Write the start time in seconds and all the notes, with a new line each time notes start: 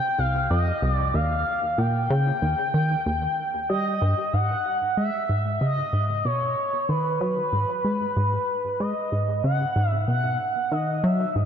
Already playing: G5
0.18 C2 F5
0.50 F2 D#5
0.82 C2
0.93 D5
1.14 D#2 F5
1.78 A#2 G5
2.10 C#3
2.42 D#2
2.74 D#3
3.06 D#2
3.69 G3 D#5
4.02 G2
4.33 G#2 F#5
4.97 G#3 E5
5.29 G#2
5.61 C#3 D#5
5.93 G#2
6.25 B2 C#5
6.89 D#3 B4
7.21 F#3
7.53 G#2
7.85 G#3
8.17 G#2
8.80 G#3 D#5
9.12 G#2
9.44 C#3 F#5
9.76 G#2
9.90 E5
10.08 B2 F#5
10.72 D#3 D#5
11.04 F#3 E5
11.35 G#2 D#5